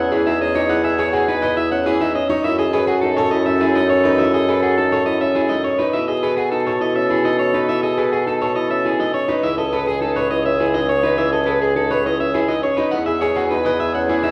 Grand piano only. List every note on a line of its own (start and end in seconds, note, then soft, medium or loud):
0.00 0.16 C#4 medium
0.11 0.30 E4 loud
0.26 0.45 D#4 medium
0.40 0.59 C#4 medium
0.55 0.74 D#4 loud
0.69 0.88 E4 medium
0.84 0.97 G#4 loud
0.98 1.17 G#4 loud
1.13 1.32 F#4 medium
1.28 1.47 D#4 loud
1.42 1.61 B4 loud
1.57 1.76 E4 medium
1.72 1.90 C#4 medium
1.86 2.05 E4 loud
2.01 2.20 D#4 loud
2.15 2.34 C#4 medium
2.29 2.49 D#4 loud
2.45 2.63 E4 loud
2.59 2.72 G#4 loud
2.73 2.92 G#4 loud
2.88 3.07 F#4 loud
3.03 3.22 D#4 loud
3.18 3.36 A4 loud
3.32 3.51 E4 loud
3.46 3.65 C#4 loud
3.61 3.80 E4 loud
3.75 3.94 D#4 medium
3.90 4.09 C#4 loud
4.05 4.24 D#4 loud
4.19 4.38 E4 medium
4.34 4.47 G#4 loud
4.48 4.67 G#4 loud
4.63 4.82 F#4 medium
4.78 4.96 D#4 medium
4.92 5.11 A4 loud
5.06 5.25 E4 medium
5.21 5.40 C#4 medium
5.36 5.54 E4 loud
5.50 5.69 D#4 medium
5.65 5.84 C#4 medium
5.79 5.98 D#4 loud
5.94 6.13 E4 medium
6.08 6.21 G#4 medium
6.23 6.42 G#4 loud
6.38 6.56 F#4 medium
6.52 6.71 D#4 medium
6.66 6.85 A4 loud
6.81 7.00 E4 medium
6.96 7.15 C#4 medium
7.10 7.29 E4 loud
7.24 7.44 D#4 medium
7.39 7.58 C#4 medium
7.54 7.73 D#4 loud
7.68 7.87 E4 medium
7.83 7.96 G#4 medium
7.97 8.17 G#4 loud
8.12 8.31 F#4 medium
8.27 8.46 D#4 medium
8.41 8.60 A4 loud
8.56 8.75 E4 medium
8.70 8.89 C#4 medium
8.85 9.04 E4 loud
8.99 9.18 D#4 medium
9.14 9.33 C#4 medium
9.28 9.48 D#4 loud
9.43 9.62 E4 medium
9.58 9.71 A4 medium
9.72 9.91 A4 loud
9.87 10.06 G#4 medium
10.01 10.20 D#4 medium
10.16 10.35 B4 loud
10.30 10.49 E4 medium
10.45 10.64 C#4 medium
10.60 10.79 E4 loud
10.74 10.93 D#4 medium
10.89 11.08 C#4 medium
11.03 11.22 D#4 loud
11.18 11.37 E4 medium
11.32 11.45 A4 medium
11.47 11.66 A4 loud
11.61 11.80 G#4 medium
11.76 11.95 D#4 medium
11.90 12.10 B4 loud
12.05 12.24 E4 medium
12.20 12.39 C#4 medium
12.34 12.53 E4 loud
12.49 12.68 D#4 medium
12.63 12.83 C#4 medium
12.78 12.97 D#4 loud
12.93 13.12 E4 medium
13.07 13.20 G#4 medium
13.22 13.41 G#4 loud
13.37 13.55 F#4 medium
13.51 13.70 D#4 medium
13.66 13.85 B4 loud
13.81 13.99 E4 medium
13.95 14.14 C#4 medium
14.09 14.28 E4 loud
14.23 14.31 D#4 loud